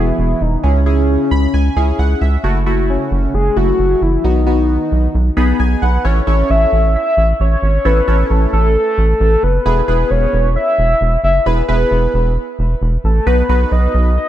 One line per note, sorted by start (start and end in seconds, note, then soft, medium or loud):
0.00 0.12 E1 loud
0.00 0.41 B3 medium
0.00 0.41 E4 medium
0.00 0.43 E4 loud
0.00 0.41 G#4 medium
0.18 0.34 E1 loud
0.41 0.57 E1 loud
0.41 0.63 D#4 loud
0.63 1.17 C#2 loud
0.63 0.79 C#4 medium
0.63 1.95 C#4 loud
0.63 0.79 E4 medium
0.63 0.79 G#4 medium
0.86 1.47 C#4 medium
0.86 1.47 E4 medium
0.86 1.47 G#4 medium
1.31 1.47 C#2 loud
1.31 1.52 B5 medium
1.54 1.70 C#2 medium
1.54 1.96 G#5 medium
1.76 1.92 C#2 loud
1.76 2.22 C#4 medium
1.76 2.22 E4 medium
1.76 2.22 G#4 medium
1.99 2.15 C#2 loud
1.99 2.20 F#5 medium
2.21 2.37 C#2 loud
2.21 2.42 E5 medium
2.44 2.97 F#1 loud
2.44 2.59 A3 medium
2.44 2.59 E4 medium
2.44 2.59 F#4 medium
2.66 3.27 A3 medium
2.66 3.27 E4 medium
2.66 3.27 F#4 medium
2.89 3.10 C#4 loud
3.11 3.27 F#1 loud
3.11 3.36 C#4 loud
3.34 3.50 F#1 loud
3.34 3.59 G#4 loud
3.56 3.72 F#1 loud
3.56 4.02 A3 medium
3.56 4.02 E4 medium
3.56 4.02 F#4 medium
3.56 4.04 F#4 loud
3.79 3.95 F#1 loud
4.02 4.17 F#1 loud
4.02 4.26 E4 loud
4.24 4.78 B1 loud
4.24 4.40 B3 medium
4.24 4.40 D#4 medium
4.24 5.60 D#4 loud
4.24 4.40 F#4 medium
4.47 5.08 B3 medium
4.47 5.08 D#4 medium
4.47 5.08 F#4 medium
4.92 5.08 B1 medium
5.15 5.30 B1 loud
5.37 5.53 B1 loud
5.37 5.83 B3 medium
5.37 5.83 D#4 medium
5.37 5.83 G#4 medium
5.37 5.58 B5 medium
5.60 5.75 B1 loud
5.60 5.81 G#5 medium
5.82 5.98 B1 loud
5.82 6.07 B4 loud
5.82 6.03 F#5 medium
6.04 6.21 A1 loud
6.04 6.20 C#4 medium
6.04 6.20 E4 medium
6.04 6.20 A4 medium
6.04 6.20 C#5 medium
6.04 6.52 C#5 loud
6.27 6.43 A1 loud
6.27 6.88 C#4 medium
6.27 6.88 E4 medium
6.27 6.88 A4 medium
6.27 6.88 C#5 medium
6.50 6.66 A1 loud
6.50 6.95 E5 loud
6.72 6.96 A1 loud
6.95 7.37 E5 loud
7.17 7.33 A1 loud
7.40 7.56 A1 loud
7.40 7.87 C#5 loud
7.63 7.78 G#1 medium
7.85 8.01 A1 loud
7.85 8.00 C#4 medium
7.85 8.00 E4 medium
7.85 8.00 A4 medium
7.85 8.32 B4 loud
7.85 8.00 C#5 medium
8.08 8.24 A1 loud
8.08 8.69 C#4 medium
8.08 8.69 E4 medium
8.08 8.69 A4 medium
8.08 8.69 C#5 medium
8.30 8.46 A1 loud
8.30 8.52 A4 loud
8.53 8.77 A1 medium
8.53 9.45 A4 loud
8.98 9.14 A1 loud
9.20 9.36 A1 loud
9.43 9.59 F#1 medium
9.43 10.12 B4 loud
9.66 9.82 E1 loud
9.66 9.81 B3 medium
9.66 9.81 E4 medium
9.66 9.81 G#4 medium
9.66 9.81 B4 medium
9.88 10.04 E1 loud
9.88 10.49 B3 medium
9.88 10.49 E4 medium
9.88 10.49 G#4 medium
9.88 10.49 B4 medium
10.11 10.27 E1 loud
10.11 10.55 C#5 loud
10.33 10.57 E1 loud
10.56 11.20 E5 loud
10.79 10.94 E1 loud
11.01 11.17 E1 loud
11.24 11.39 F#1 medium
11.24 11.48 E5 loud
11.46 11.62 E1 loud
11.46 11.61 B3 medium
11.46 11.61 E4 medium
11.46 11.61 G#4 medium
11.46 11.61 B4 medium
11.46 11.68 B4 loud
11.68 11.85 E1 loud
11.68 12.30 B3 medium
11.68 12.30 E4 medium
11.68 12.29 G#4 medium
11.68 12.29 B4 medium
11.68 12.33 B4 medium
11.91 12.07 E1 loud
12.14 12.38 E1 loud
12.59 12.75 E1 medium
12.82 12.97 E1 loud
13.04 13.20 A1 medium
13.04 13.28 A4 medium
13.27 13.42 B1 loud
13.27 13.42 B3 medium
13.27 13.42 D#4 medium
13.27 13.42 F#4 medium
13.27 13.42 B4 medium
13.27 13.73 B4 loud
13.49 13.65 B1 loud
13.49 14.10 B3 medium
13.49 14.10 D#4 medium
13.49 14.10 F#4 medium
13.49 14.10 B4 medium
13.72 13.87 B1 loud
13.72 14.16 D#5 loud
13.94 14.18 B1 loud
14.17 14.29 D#5 loud